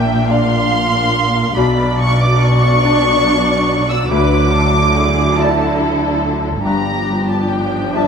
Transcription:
0.00 1.52 A#1 medium
0.00 1.53 A#2 medium
0.00 1.53 A#3 medium
0.00 1.53 D4 medium
0.00 0.31 E5 medium
0.00 0.29 G5 medium
0.29 1.53 D4 soft
0.29 1.53 D5 soft
0.29 1.57 F5 medium
0.29 1.57 C6 loud
1.56 4.07 B1 medium
1.56 4.06 B2 medium
1.56 6.61 F#3 medium
1.56 4.07 D4 medium
1.56 4.07 D5 medium
1.56 1.99 B5 medium
2.00 2.21 C#6 medium
2.21 2.43 D6 medium
2.42 3.90 C#6 loud
2.85 4.07 D4 medium
2.85 4.07 D5 medium
3.91 4.11 E6 medium
4.10 6.61 D2 medium
4.10 6.61 D3 medium
4.10 6.61 E4 medium
4.10 4.52 B4 medium
4.10 5.36 D6 loud
4.53 4.95 A4 medium
4.96 5.39 G#4 medium
5.38 6.61 E4 soft
5.38 6.65 A4 medium
5.38 6.62 D5 soft
5.38 5.81 A5 medium
6.64 8.07 G1 medium
6.64 8.07 G2 medium
6.64 8.07 F3 medium
6.64 8.07 D4 medium
6.64 7.92 G4 medium
6.64 7.25 A#5 medium
7.30 7.51 A5 medium
7.51 7.95 G5 medium
7.95 8.07 D4 soft
7.95 8.07 D5 soft
7.95 8.07 E5 medium
7.95 8.07 A5 medium

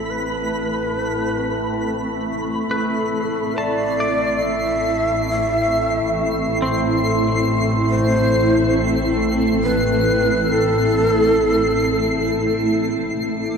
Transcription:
0.00 2.64 A1 medium
0.00 13.12 A3 medium
0.00 13.57 A3 medium
0.00 1.17 C4 medium
0.00 13.57 C4 medium
0.00 13.12 E4 medium
0.00 13.57 E4 medium
0.00 0.12 A4 medium
0.00 13.57 A4 medium
0.00 2.72 B5 medium
0.10 2.27 B4 loud
2.68 13.08 A1 medium
2.68 3.58 A4 medium
2.68 4.18 B4 medium
2.68 13.14 C7 medium
3.56 4.44 D5 loud
3.56 6.82 A5 medium
4.00 7.25 D5 medium
4.43 5.29 E5 loud
5.30 6.56 E5 loud
6.62 9.86 C4 medium
7.90 9.17 C5 loud
9.64 10.53 B4 loud
10.52 12.69 A4 loud
13.12 13.57 A1 medium
13.12 13.57 A3 medium
13.12 13.57 E4 medium
13.12 13.57 D6 medium

